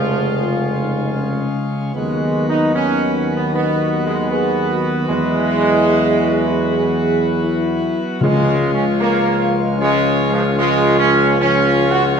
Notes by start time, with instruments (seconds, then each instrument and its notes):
Already playing: tuba F1, pipe organ C#3 G#3 C#4 F4, trombone section F3, trumpet section F4, french horn section G#4
0.38 french horn section F4
0.79 french horn section D#4
1.16 french horn section C#4
1.95 tuba D#2, pipe organ D#3 F#3 B3 F#4, trombone section G#3, french horn section B3, trumpet section F#4 B4
2.49 trombone section D#4
2.75 trombone section C#4
3.36 trombone section B3
3.52 trombone section B3, french horn section D#4
4.05 trombone section G#3
4.31 trombone section B3, french horn section G#4
4.70 french horn section F#4
5.08 tuba E2, pipe organ E3, trombone section G#3, french horn section E4
6.64 french horn section G#4
7.43 french horn section E4
8.19 tuba C#2, timpani C#3, pipe organ F3 G#3 C#4 F4, trombone section G#3, french horn section F4, trumpet section F4 C#5
8.74 trombone section C#4
9.00 trombone section A#3
9.62 trombone section G#3
9.77 trombone section G#3, french horn section C#4, trumpet section F4 C#5
10.32 trombone section F3
10.56 trombone section G#3, french horn section F4, trumpet section F4 C#5
10.98 trombone section C#4
11.37 pipe organ F3 G#3 C#4 F4, trombone section C#4, trumpet section F4 C#5
11.91 trombone section F#4
12.16 french horn section G#4